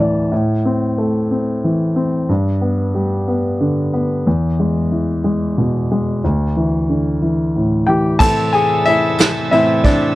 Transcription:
Already playing: D2 A2 D3 A5
0.00 E3 D5
0.32 A2
0.65 C4
0.98 A3
1.31 C4
1.64 E3
1.96 C4
2.29 G2
2.61 B3
2.95 G3
3.28 B3
3.61 D3
3.94 B3
4.27 E2
4.60 G#3
4.92 E3
5.24 G#3
5.58 B2
5.92 G#3
6.24 D2
6.57 E3
6.89 D3
7.22 E3
7.56 A2
7.87 E3 G4 G5
8.19 A2 C3 E3 A3 C4 E4 A4 A5, kick, crash
8.53 G#4 G#5, ride
8.85 E4 E5, ride
9.18 snare, ride
9.51 A2 E3 C4 E4 E5, ride
9.84 D4 D5, kick, ride

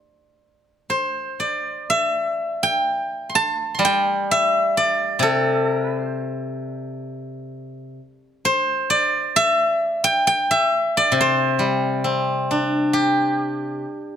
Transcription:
Already playing: C5
0.90 C5
1.40 D5
1.90 E5
2.63 G5
3.29 C6
3.35 A5
3.75 C6
3.79 G3 A5
3.85 G5
4.31 E5
4.77 D5
5.19 C3 A4
5.66 A#4
5.87 B4
6.08 C5
8.45 C5
8.90 D5
9.36 E5
10.04 G5
10.27 G5
10.51 E5
10.97 D5
11.12 C3
11.21 C5
11.59 G3
12.04 C4
12.51 D4
12.93 G4
13.48 B4
13.87 A#4

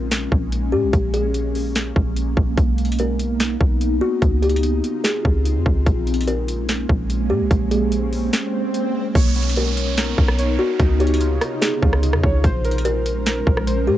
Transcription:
Already playing: A#1 G#3 A#3 C#4 A#4
0.11 snare, closed hi-hat
0.32 A#1, kick
0.52 closed hi-hat
0.72 A#2 G4
0.83 A#1
0.93 A#1, kick, closed hi-hat
1.14 G#4, closed hi-hat
1.34 closed hi-hat
1.55 open hi-hat
1.75 snare, closed hi-hat
1.96 A#1, kick
2.17 closed hi-hat
2.37 A#1, kick
2.58 B1 B3 D#4, kick, closed hi-hat
2.78 closed hi-hat
2.85 closed hi-hat
2.92 closed hi-hat
2.99 A#4, closed hi-hat
3.19 closed hi-hat
3.40 snare, closed hi-hat
3.61 B1, kick
3.81 closed hi-hat
4.01 F#4
4.22 C#2 C#3 C4 F4, kick, closed hi-hat
4.42 G4, closed hi-hat
4.49 closed hi-hat
4.56 closed hi-hat
4.63 closed hi-hat
4.84 closed hi-hat
5.04 G#4, snare, closed hi-hat
5.25 C#2, kick
5.45 closed hi-hat
5.56 F2
5.66 C#2, kick
5.86 A#1 G#3 A#3 C#4, kick, closed hi-hat, swell
6.07 closed hi-hat
6.14 closed hi-hat
6.21 closed hi-hat
6.28 A#4, closed hi-hat
6.48 closed hi-hat
6.69 snare, closed hi-hat
6.89 A#1, kick
7.10 closed hi-hat
7.30 A#2 G4
7.41 A#1
7.51 A#1, kick, closed hi-hat
7.71 G#4, closed hi-hat
7.92 closed hi-hat
8.13 open hi-hat
8.33 snare, closed hi-hat
8.74 closed hi-hat
9.15 B1 B3 D#4 A#4 C#5, kick, closed hi-hat, downlifter
9.36 B3, closed hi-hat
9.43 closed hi-hat
9.49 closed hi-hat
9.56 A#4, closed hi-hat
9.77 closed hi-hat
9.97 A#4, snare, closed hi-hat
10.18 B1, kick
10.28 cross-stick
10.39 C#5, closed hi-hat
10.59 F#4
10.79 C#2 C3 C#3 D#4 F4, kick, closed hi-hat
11.00 G4 C#5, closed hi-hat
11.07 closed hi-hat
11.14 closed hi-hat
11.20 F4, closed hi-hat
11.41 D#4, cross-stick, closed hi-hat
11.62 G#4, snare, closed hi-hat
11.83 C#2 F4, kick
11.93 cross-stick
12.02 D#4, closed hi-hat
12.13 F2, cross-stick
12.23 C#2 C#5, kick
12.44 A#1 G#3 C#4 A#4 C5, kick, closed hi-hat
12.65 A#4, closed hi-hat
12.71 closed hi-hat
12.78 closed hi-hat
12.85 A#4, closed hi-hat
13.06 closed hi-hat
13.26 A#4, snare, closed hi-hat
13.47 A#1, kick
13.57 cross-stick
13.67 C5, closed hi-hat
13.87 A#2 G4

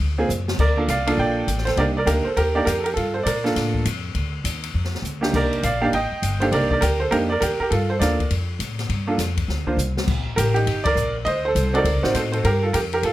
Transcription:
0.00 D2
0.18 A#3 C4 F4 G#4
0.29 F#2, hi-hat pedal
0.48 snare
0.59 D2 A#4 D5, kick, crash
0.77 A#3 D4 F4 A4
0.88 C2 D5 F5, kick, hi-hat pedal, ride
1.07 A#3 D4 F4 A4 D5 F5, ride
1.17 A#1 D5 G5, kick
1.47 A1, kick, hi-hat pedal, ride
1.58 snare
1.65 A4 C5, snare, ride
1.77 C2 A#3 D4 D#4 G4 A#4 D5, kick, ride
1.97 A#4 D5
2.06 D2 A#3 D4 D#4 G4 A#4, kick, hi-hat pedal, ride
2.25 A4 C5, muted upright bass stroke
2.37 D#2 G4 A#4, kick, ride
2.55 A#3 D4 D#4 G4 A#4 D5
2.65 F2 G4 A#4, kick, hi-hat pedal, ride
2.79 A4
2.84 G4 A#4, ride
2.94 G2 F4 A4, kick, ride
3.14 A4 C5
3.23 A#2 A#4 D5, kick, hi-hat pedal, ride
3.44 A#3 D4 F4 A4, snare
3.56 A2, kick, snare, ride
3.74 kick
3.85 F2, kick, hi-hat pedal, ride
4.15 D2, kick, ride
4.44 D#2, kick, hi-hat pedal, ride
4.64 ride
4.74 F2, kick
4.85 snare
4.95 snare
5.02 D2, hi-hat pedal
5.21 A#3 D4 D#4 G4, snare
5.33 C2 A#4 D5, kick, crash
5.53 ride
5.63 A#1 D5 F5, kick, hi-hat pedal, ride
5.81 A#3 D4 D#4 G4 D5 F5
5.93 A1 D#5 G5, kick, ride
6.12 muted upright bass stroke
6.22 G1, kick, hi-hat pedal, ride
6.40 A#3 D4 D#4 G4 A4 C5, ride
6.52 C2 A#4 D5, kick, ride
6.71 A#4 D5, kick
6.81 D2 G4 A#4, kick, hi-hat pedal, ride
7.00 A4 C5
7.11 F2 A#3 D4 D#4 G4 A#4, kick, ride
7.30 A#4 D5
7.41 D#2 G4 A#4, kick, hi-hat pedal, ride
7.60 G4 A#4, muted upright bass stroke
7.70 G2 F4 A4, kick, ride
7.90 A4 C5
7.99 D#2 A#3 D4 F4 A4 A#4 D5, kick, snare, hi-hat pedal, ride
8.20 kick, ride
8.31 F2, kick, ride
8.59 A2, kick, hi-hat pedal, ride
8.79 snare, ride
8.89 G2, kick, ride
9.07 A#3 D4 F4 A4
9.18 F2, kick, snare, hi-hat pedal, ride
9.37 kick, ride
9.48 D2, kick, snare
9.67 A#3 D4 F4 C5, kick
9.77 C2, hi-hat pedal
9.97 snare
10.08 A#1, kick, crash
10.36 A1 G4 A#4, kick, hi-hat pedal, ride
10.54 D#4 G4, ride
10.66 G1, kick, ride
10.84 A#4 D5, kick, ride
10.95 A#1, hi-hat pedal
11.25 D2 C5 D#5, kick, ride
11.45 A4 C5
11.55 C2, kick, hi-hat pedal, ride
11.74 C4 D#4 F#4 A4 A#4 D5, ride
11.84 D2, kick, ride
11.94 C2
12.03 A1 C4 D#4 F#4 C5, snare
12.15 A2 A4 C5, kick, hi-hat pedal, ride
12.32 A4 C5, ride
12.44 G2 G4 A#4, kick, ride
12.63 F4 A4
12.73 F2 G4 A#4, kick, hi-hat pedal, ride
12.93 G4 A#4, ride
13.03 A2 F4 A4, kick, ride

